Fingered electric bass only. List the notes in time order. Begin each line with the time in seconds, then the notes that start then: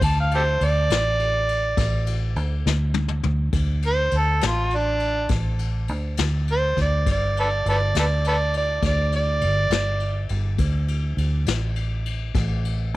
0.02 D2
0.61 D2
0.90 A1
1.78 A1
2.36 D2
2.66 D2
3.24 D2
3.53 D2
4.12 D2
4.42 A1
5.30 A1
5.89 D2
6.18 D2
6.77 D2
7.06 G1
7.66 G1
7.95 D2
8.82 D2
9.42 G1
9.70 G1
10.30 G1
10.59 D2
11.17 D2
11.47 A1
12.35 A1